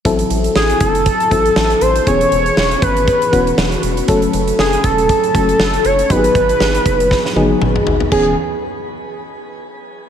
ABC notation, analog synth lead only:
X:1
M:4/4
L:1/8
Q:"Swing 16ths" 1/4=119
K:E
V:1 name="Analog synth lead"
z2 G A4 =c | c3 B4 z | z2 G A A3 c | B6 z2 |
G z6 z |]